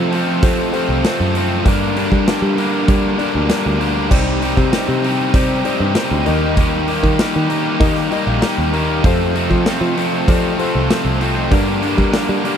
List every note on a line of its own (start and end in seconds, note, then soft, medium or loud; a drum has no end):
0.00 0.11 F2 medium
0.00 0.11 C3 loud
0.00 0.13 F3 medium
0.00 0.39 F3 medium
0.00 0.11 A3 loud
0.00 0.13 C4 loud
0.00 0.14 F4 loud
0.00 0.18 F4 medium
0.00 0.18 G4 medium
0.00 0.14 A4 loud
0.00 0.18 A4 medium
0.00 0.18 C5 loud
0.12 0.41 F2 medium
0.12 0.42 C3 medium
0.12 0.43 F3 medium
0.12 0.43 A3 medium
0.12 0.44 C4 medium
0.12 0.43 F4 medium
0.12 0.44 A4 medium
0.12 open hi-hat medium
0.42 0.72 F2 medium
0.42 0.73 C3 medium
0.42 0.71 F3 medium
0.42 0.74 F3 medium
0.42 0.73 A3 loud
0.42 0.75 C4 loud
0.42 0.67 F4 medium
0.42 0.74 F4 medium
0.42 0.67 G4 medium
0.42 0.67 A4 medium
0.42 0.75 A4 loud
0.42 0.67 C5 loud
0.42 kick loud
0.42 open hi-hat loud
0.73 1.04 F2 medium
0.73 1.04 C3 medium
0.73 1.04 F3 medium
0.73 1.05 A3 medium
0.73 1.05 C4 loud
0.73 1.47 F4 medium
0.73 1.05 F4 loud
0.73 1.47 G4 medium
0.73 1.47 A4 medium
0.73 1.06 A4 medium
0.73 1.47 C5 medium
0.73 open hi-hat medium
0.89 1.03 C2 medium
1.04 1.34 F2 loud
1.04 1.34 C3 loud
1.04 1.36 F3 loud
1.04 1.35 A3 loud
1.04 1.37 C4 medium
1.04 1.37 F4 loud
1.04 1.38 A4 loud
1.04 snare loud
1.04 open hi-hat medium
1.20 1.62 F#2 loud
1.35 1.64 F2 medium
1.35 1.64 C3 medium
1.35 1.65 F3 medium
1.35 1.65 A3 medium
1.35 1.65 C4 loud
1.35 1.66 F4 medium
1.35 open hi-hat medium
1.39 1.66 A4 medium
1.64 2.08 G2 loud
1.64 1.96 G2 medium
1.64 1.96 D3 loud
1.64 1.97 G3 loud
1.64 2.63 D4 medium
1.64 2.64 G4 medium
1.64 2.64 A#4 medium
1.64 2.64 D5 loud
1.64 kick loud
1.64 open hi-hat medium
1.69 1.97 A#3 loud
1.69 1.98 D4 loud
1.69 1.98 A#4 loud
1.97 2.26 G2 medium
1.97 2.27 D3 medium
1.97 2.28 G3 medium
1.97 2.27 A#3 medium
1.97 2.29 D4 medium
1.97 2.28 A#4 loud
1.97 open hi-hat medium
2.12 2.26 G3 medium
2.12 kick medium
2.27 2.56 G2 medium
2.27 2.57 D3 medium
2.27 2.59 G3 loud
2.27 2.58 A#3 medium
2.27 2.58 D4 loud
2.27 2.59 A#4 loud
2.27 snare loud
2.27 open hi-hat medium
2.42 2.85 G3 medium
2.58 2.86 G2 medium
2.58 2.86 D3 medium
2.58 2.88 G3 medium
2.58 2.87 A#3 loud
2.58 2.88 D4 medium
2.58 2.88 A#4 loud
2.58 open hi-hat medium
2.87 3.19 G2 loud
2.87 3.19 D3 loud
2.87 3.17 G3 medium
2.87 3.20 G3 loud
2.87 3.20 A#3 loud
2.87 3.13 D4 medium
2.87 3.20 D4 loud
2.87 3.13 G4 medium
2.87 3.13 A#4 medium
2.87 3.21 A#4 loud
2.87 3.13 D5 medium
2.87 kick loud
2.87 open hi-hat medium
3.18 3.48 G2 medium
3.18 3.49 D3 loud
3.18 3.50 G3 loud
3.18 3.49 A#3 loud
3.18 3.92 D4 medium
3.18 3.50 D4 medium
3.18 3.93 G4 medium
3.18 3.92 A#4 medium
3.18 3.93 D5 medium
3.18 open hi-hat medium
3.22 3.50 A#4 loud
3.35 3.49 D2 medium
3.49 3.78 G2 medium
3.49 3.79 D3 medium
3.49 3.80 G3 loud
3.49 3.79 A#3 loud
3.49 3.80 D4 loud
3.49 3.80 A#4 loud
3.49 snare loud
3.49 open hi-hat medium
3.66 4.08 D2 loud
3.80 4.09 G2 medium
3.80 4.09 D3 medium
3.80 4.11 G3 medium
3.80 4.09 A#3 medium
3.80 4.10 D4 loud
3.80 4.10 A#4 loud
3.80 open hi-hat medium
4.10 4.54 C2 loud
4.10 4.40 C3 loud
4.10 4.42 G3 loud
4.10 4.41 C4 loud
4.10 5.09 D#4 medium
4.10 4.43 D#4 loud
4.10 5.09 G4 medium
4.10 4.43 G4 loud
4.10 5.10 C5 medium
4.10 5.10 D5 loud
4.10 kick loud
4.10 crash loud
4.41 4.71 C3 medium
4.41 4.73 G3 medium
4.41 4.72 C4 loud
4.41 4.73 D#4 loud
4.41 4.74 G4 medium
4.41 open hi-hat medium
4.57 4.72 C3 medium
4.57 kick medium
4.72 5.03 C3 medium
4.72 5.03 G3 loud
4.72 5.04 C4 loud
4.72 5.04 D#4 loud
4.72 5.05 G4 loud
4.72 snare loud
4.72 open hi-hat medium
4.89 5.31 C3 medium
5.04 5.32 C3 medium
5.04 5.34 G3 medium
5.04 5.33 C4 medium
5.04 5.34 D#4 medium
5.04 5.35 G4 medium
5.04 open hi-hat medium
5.33 5.63 C3 medium
5.33 5.63 C3 loud
5.33 5.65 G3 loud
5.33 5.65 C4 loud
5.33 5.59 D#4 medium
5.33 5.64 D#4 loud
5.33 5.59 G4 medium
5.33 5.66 G4 loud
5.33 5.59 C5 medium
5.33 5.59 D5 medium
5.33 kick loud
5.33 open hi-hat loud
5.64 5.94 C3 medium
5.64 5.95 G3 loud
5.64 5.95 C4 loud
5.64 6.25 D#4 medium
5.64 5.96 D#4 loud
5.64 6.25 G4 medium
5.64 5.97 G4 loud
5.64 6.27 C5 medium
5.64 6.27 D5 medium
5.64 open hi-hat medium
5.80 5.95 G2 medium
5.95 6.24 C3 medium
5.95 6.27 G3 medium
5.95 6.25 C4 medium
5.95 6.25 D#4 loud
5.95 6.28 G4 loud
5.95 snare loud
5.95 open hi-hat medium
6.11 6.26 D2 loud
6.26 7.00 D#2 loud
6.26 6.55 D#3 loud
6.26 6.57 G3 loud
6.26 6.56 A#3 loud
6.26 7.25 D#4 medium
6.26 6.57 D#4 loud
6.26 7.25 G4 medium
6.26 6.58 G4 loud
6.26 7.25 A#4 medium
6.26 7.25 D#5 loud
6.26 open hi-hat medium
6.57 6.86 D#3 loud
6.57 6.88 G3 loud
6.57 6.88 A#3 loud
6.57 6.88 D#4 loud
6.57 6.89 G4 loud
6.57 kick loud
6.57 open hi-hat medium
6.88 7.19 D#3 medium
6.88 7.20 G3 medium
6.88 7.19 A#3 medium
6.88 7.20 D#4 medium
6.88 7.21 G4 loud
6.88 open hi-hat medium
7.03 7.18 D#3 medium
7.03 kick medium
7.19 7.49 D#3 loud
7.19 7.50 G3 medium
7.19 7.50 A#3 loud
7.19 7.50 D#4 loud
7.19 7.52 G4 loud
7.19 snare loud
7.19 open hi-hat medium
7.36 7.78 D#3 medium
7.50 7.80 D#3 medium
7.50 7.81 G3 medium
7.50 7.80 A#3 medium
7.50 7.81 D#4 medium
7.50 7.82 G4 medium
7.50 open hi-hat medium
7.80 8.09 D#3 loud
7.80 8.11 D#3 loud
7.80 8.13 G3 loud
7.80 8.12 A#3 loud
7.80 8.05 D#4 medium
7.80 8.12 D#4 loud
7.80 8.05 G4 medium
7.80 8.14 G4 loud
7.80 8.05 A#4 medium
7.80 8.06 D#5 loud
7.80 kick loud
7.80 open hi-hat medium
7.96 snare soft
8.12 8.41 D#3 medium
8.12 8.43 G3 medium
8.12 8.43 A#3 loud
8.12 8.86 D#4 medium
8.12 8.43 D#4 loud
8.12 8.86 G4 medium
8.12 8.44 G4 loud
8.12 8.86 A#4 medium
8.12 8.27 D#5 medium
8.12 open hi-hat medium
8.27 8.41 A#1 medium
8.27 8.42 F5 medium
8.42 8.72 D#3 loud
8.42 8.74 G3 medium
8.42 8.73 A#3 loud
8.42 8.73 D#4 medium
8.42 8.75 G4 medium
8.42 8.72 G5 medium
8.42 snare loud
8.42 open hi-hat medium
8.58 9.01 D#2 medium
8.74 9.03 D#3 medium
8.74 9.05 G3 medium
8.74 9.03 A#3 medium
8.74 9.03 D#4 loud
8.74 9.06 G4 medium
8.74 9.03 A#5 medium
8.74 open hi-hat medium
9.03 9.34 F2 medium
9.03 9.47 F2 loud
9.03 9.34 C3 loud
9.03 9.34 F3 loud
9.03 9.34 A3 loud
9.03 9.35 C4 loud
9.03 9.35 F4 loud
9.03 10.04 F4 medium
9.03 10.04 G4 medium
9.03 9.35 A4 loud
9.03 10.04 A4 medium
9.03 10.04 C5 loud
9.03 kick loud
9.03 open hi-hat medium
9.35 9.63 F2 medium
9.35 9.64 C3 loud
9.35 9.65 F3 loud
9.35 9.65 A3 medium
9.35 9.66 C4 medium
9.35 9.66 F4 loud
9.35 9.67 A4 loud
9.35 open hi-hat medium
9.50 9.65 F3 medium
9.50 kick medium
9.64 9.94 F2 loud
9.64 9.95 C3 loud
9.64 9.97 F3 loud
9.64 9.96 A3 loud
9.64 9.98 C4 loud
9.64 9.98 F4 loud
9.64 9.99 A4 loud
9.64 snare loud
9.64 open hi-hat medium
9.81 10.24 F3 medium
9.96 10.25 F2 medium
9.96 10.26 C3 medium
9.96 10.27 F3 medium
9.96 10.26 A3 medium
9.96 10.28 C4 medium
9.96 10.28 F4 medium
9.96 open hi-hat medium
10.00 10.29 A4 medium
10.26 10.57 F2 medium
10.26 10.57 C3 loud
10.26 10.57 F3 loud
10.26 10.58 F3 loud
10.26 10.58 A3 medium
10.26 10.58 C4 loud
10.26 10.53 F4 medium
10.26 10.59 F4 loud
10.26 10.53 G4 medium
10.26 10.53 A4 medium
10.26 10.60 A4 loud
10.26 10.54 D5 medium
10.26 kick loud
10.26 open hi-hat loud
10.58 10.87 F2 medium
10.58 10.88 C3 loud
10.58 10.90 F3 loud
10.58 10.88 A3 medium
10.58 10.91 C4 loud
10.58 11.34 F4 medium
10.58 10.91 F4 loud
10.58 11.34 G4 medium
10.58 11.34 A4 medium
10.58 10.91 A4 loud
10.58 11.33 C5 medium
10.58 open hi-hat medium
10.75 10.89 C2 medium
10.88 11.18 F2 loud
10.88 11.19 C3 loud
10.88 11.20 F3 medium
10.88 11.19 A3 loud
10.88 11.21 C4 loud
10.88 11.21 F4 loud
10.88 11.22 A4 loud
10.88 snare loud
10.88 open hi-hat medium
11.05 11.48 C2 medium
11.20 11.49 F2 medium
11.20 11.50 C3 medium
11.20 11.50 F3 medium
11.20 11.50 A3 medium
11.20 11.51 C4 loud
11.20 11.51 F4 medium
11.20 11.51 A4 medium
11.20 open hi-hat medium
11.51 11.95 G2 loud
11.51 11.83 G2 loud
11.51 11.83 D3 loud
11.51 11.84 G3 loud
11.51 12.51 D4 medium
11.51 11.85 D4 loud
11.51 12.51 G4 medium
11.51 12.51 A#4 medium
11.51 12.51 D5 loud
11.51 kick loud
11.51 open hi-hat medium
11.55 11.84 A#3 loud
11.55 11.85 A#4 loud
11.83 12.14 G2 loud
11.83 12.15 D3 medium
11.83 12.15 G3 medium
11.83 12.16 A#3 medium
11.83 12.16 D4 medium
11.83 12.16 A#4 loud
11.83 open hi-hat medium
11.98 12.12 G3 medium
11.98 kick medium
12.12 12.45 G2 medium
12.12 12.43 D3 loud
12.12 12.44 A#3 loud
12.12 12.44 D4 loud
12.12 snare loud
12.12 open hi-hat medium
12.16 12.45 D3 medium
12.16 12.46 G3 loud
12.16 12.46 A#3 loud
12.16 12.46 D4 medium
12.16 12.47 A#4 loud
12.29 12.57 G3 medium
12.45 12.57 G2 medium
12.45 12.57 D3 medium
12.45 12.57 G3 medium
12.45 12.57 A#3 medium
12.45 12.57 D4 medium
12.45 12.57 A#4 loud
12.45 open hi-hat medium